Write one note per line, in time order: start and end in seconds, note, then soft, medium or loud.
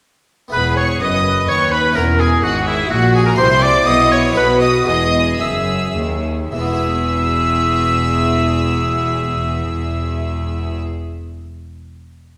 0.48 0.97 B3 medium
0.48 1.90 E4 medium
0.48 1.91 G#4 medium
0.52 0.98 E1 medium
0.52 0.97 E2 medium
0.52 0.98 E2 medium
0.52 0.98 G#4 medium
0.52 0.75 B4 loud
0.52 0.76 B5 loud
0.77 1.01 C#5 medium
0.77 0.88 C#5 medium
0.77 1.01 C#6 loud
1.00 1.48 F#1 medium
1.00 1.44 F#2 medium
1.00 1.48 F#2 medium
1.00 1.23 B4 medium
1.00 1.47 D#5 loud
1.00 1.48 D#5 loud
1.00 1.48 D#6 loud
1.24 1.94 B4 medium
1.48 1.92 D#2 medium
1.48 1.95 D#2 medium
1.48 1.72 C#5 loud
1.48 1.73 C#5 loud
1.48 1.72 C#6 loud
1.72 1.97 B4 loud
1.72 1.96 B4 loud
1.72 1.96 B5 loud
1.91 3.31 C#4 medium
1.91 3.32 E4 medium
1.91 3.33 F#4 medium
1.95 2.42 E1 medium
1.95 2.39 E2 medium
1.95 2.42 E2 medium
1.95 2.03 A#4 loud
1.95 2.43 A#4 medium
1.95 2.22 A#4 loud
1.95 2.03 A#5 loud
2.19 2.28 G#4 medium
2.19 2.45 G#4 medium
2.19 2.43 G#5 loud
2.43 2.89 G#1 medium
2.43 2.86 G#2 medium
2.43 2.89 G#2 loud
2.43 2.66 F#4 loud
2.43 2.67 F#4 medium
2.43 2.90 G#4 medium
2.43 2.66 F#5 loud
2.66 2.89 E4 medium
2.66 2.90 E4 medium
2.66 2.90 E5 loud
2.89 3.37 A#1 medium
2.89 3.34 A#2 medium
2.89 3.37 A#2 loud
2.89 3.37 F#4 medium
2.89 3.14 F#4 loud
2.89 3.14 F#5 loud
3.14 3.26 G#4 loud
3.14 3.25 G#4 loud
3.14 3.26 G#5 loud
3.26 3.31 A#4 loud
3.26 3.38 A#4 loud
3.26 3.39 A#5 loud
3.33 3.83 A#3 medium
3.33 3.83 E4 medium
3.33 3.85 E4 medium
3.33 3.84 G4 medium
3.33 3.62 C5 loud
3.33 3.62 C6 loud
3.38 3.85 C2 loud
3.38 3.85 C3 loud
3.38 3.82 C3 medium
3.38 3.64 C5 loud
3.61 3.86 D5 loud
3.61 3.88 D5 loud
3.61 3.86 D6 loud
3.82 4.34 B1 loud
3.82 4.30 B3 medium
3.82 4.33 E4 medium
3.82 4.35 E4 medium
3.82 4.34 G#4 medium
3.82 4.10 D#5 loud
3.82 4.11 D#6 loud
3.87 4.35 B2 loud
3.87 4.32 B2 medium
3.87 4.11 D#5 loud
4.10 4.36 C#5 loud
4.10 4.23 C#5 loud
4.10 4.19 C#6 loud
4.31 4.81 B3 medium
4.31 4.84 D#4 medium
4.31 4.85 A4 medium
4.31 4.61 B4 loud
4.35 4.86 B1 medium
4.35 4.83 B2 medium
4.35 4.87 B2 loud
4.35 4.88 F#4 medium
4.35 4.48 B4 loud
4.35 4.61 B5 loud
4.60 4.68 D#5 loud
4.60 4.87 D#5 loud
4.60 4.86 D#6 loud
4.82 5.36 B3 medium
4.82 6.47 E4 medium
4.82 6.48 G#4 medium
4.82 5.39 D#5 loud
4.87 5.39 E1 medium
4.87 5.36 E2 medium
4.87 5.40 E2 medium
4.87 6.29 G#4 medium
4.87 5.39 D#5 loud
4.87 5.39 D#6 loud
5.39 5.94 F#1 medium
5.39 5.91 F#2 medium
5.39 5.94 F#2 medium
5.39 6.22 E5 medium
5.39 6.23 E5 medium
5.39 6.24 E6 loud
5.95 6.49 D#2 medium
5.95 6.52 D#2 medium
6.52 10.79 E1 medium
6.52 10.80 E2 loud
6.52 11.13 E3 medium
6.52 10.79 G#4 medium
6.52 10.79 E5 medium
6.52 10.80 E5 medium
6.52 10.80 E6 loud
6.59 11.20 B3 medium
6.66 11.27 E4 medium
6.73 11.34 G#4 medium
6.80 11.41 E5 medium